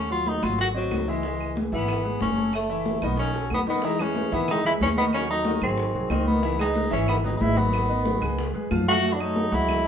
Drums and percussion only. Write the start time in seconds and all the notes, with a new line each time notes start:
0.10 high bongo, high conga
0.26 high bongo, high conga
0.43 high conga, claves
0.59 high bongo
0.75 high bongo, high conga
0.91 high bongo, low bongo, high conga, claves
1.08 high bongo
1.23 high bongo, high conga
1.40 high bongo, high conga, claves
1.56 high bongo, high conga
1.72 high bongo, high conga
1.88 high bongo, high conga, claves
2.05 high conga
2.21 high bongo, low bongo, high conga
2.37 high bongo, high conga
2.53 high bongo, high conga, claves
2.69 high bongo, high conga
2.85 high bongo, high conga
3.02 high conga, claves
3.17 high bongo, high conga
3.34 high bongo
3.50 high bongo, high conga, claves
3.67 low bongo
3.82 high bongo, high conga
3.99 high bongo, high conga, claves
4.15 high bongo, high conga
4.32 high conga
4.48 high bongo, high conga, low conga, claves
4.65 high conga, low conga
4.81 high bongo, low bongo, high conga
4.97 high bongo, high conga
5.13 high bongo, high conga, claves
5.30 high bongo
5.45 high bongo, high conga
5.61 high conga, claves
5.78 high bongo, high conga
5.94 high conga
6.10 high bongo, low bongo, high conga, claves
6.27 high bongo, high conga
6.43 high bongo, high conga
6.59 high bongo, high conga, claves
6.75 high bongo, high conga
7.08 high bongo, high conga, low conga, claves
7.25 high conga, low conga
7.40 high bongo, low bongo, high conga
7.57 high bongo, high conga
7.73 high bongo, high conga, claves
7.90 high bongo, high conga
8.05 high bongo, high conga
8.22 high conga, claves
8.38 high bongo, high conga
8.54 high conga
8.71 high bongo, low bongo, high conga, claves
8.87 high bongo, high conga
9.03 high bongo, high conga
9.19 high bongo, high conga, claves
9.36 high bongo, high conga
9.52 high conga
9.69 high bongo, high conga, low conga, claves